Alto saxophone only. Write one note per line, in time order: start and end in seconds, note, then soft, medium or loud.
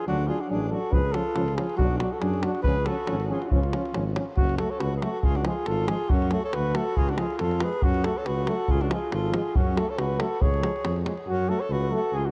0.07 0.29 D4 medium
0.28 0.42 F4 medium
0.40 0.50 D4 medium
0.50 0.72 D4 medium
0.72 0.96 F#4 medium
0.94 1.17 G#4 medium
1.15 1.57 F4 medium
1.57 1.79 F4 medium
1.79 1.99 D4 medium
2.01 2.15 D4 medium
2.14 2.24 F#4 medium
2.23 2.44 D4 medium
2.44 2.65 D4 medium
2.66 2.90 G#4 medium
2.88 3.29 F#4 medium
3.29 3.45 F4 medium
3.29 3.34 F#4 medium
3.45 3.54 D4 medium
3.45 3.48 F4 soft
3.52 4.16 C#4 medium
4.38 4.57 C#4 medium
4.59 4.73 F#4 medium
4.71 4.82 A4 medium
4.80 4.96 F#4 medium
4.97 5.04 G#4 medium
5.02 5.21 F#4 medium
5.21 5.38 F4 medium
5.21 5.26 F#4 medium
5.36 5.49 D4 medium
5.48 5.68 F4 medium
5.68 5.90 F4 medium
5.90 6.13 F4 medium
6.11 6.35 C#4 medium
6.33 6.44 F#4 medium
6.45 6.57 A4 medium
6.56 6.75 F#4 medium
6.75 6.99 F#4 medium
6.98 7.12 F4 medium
7.11 7.21 D4 medium
7.20 7.40 F4 medium
7.42 7.65 F4 medium
7.64 7.86 G#4 medium
7.84 8.07 C#4 medium
8.06 8.19 F#4 medium
8.18 8.28 A4 medium
8.27 8.48 F#4 medium
8.48 8.72 F#4 medium
8.71 8.83 F4 medium
8.82 8.94 D4 medium
8.92 9.12 F4 medium
9.14 9.36 F4 medium
9.36 9.57 F4 medium
9.56 9.79 C#4 medium
9.77 9.91 F#4 medium
9.89 10.01 A4 medium
9.99 10.20 F#4 medium
10.20 10.43 F#4 medium
10.42 11.06 G#4 medium
11.28 11.51 C#4 medium
11.49 11.63 F#4 medium
11.62 11.74 A4 medium
11.72 11.95 F#4 medium
11.95 12.19 F#4 medium
12.17 12.30 F4 medium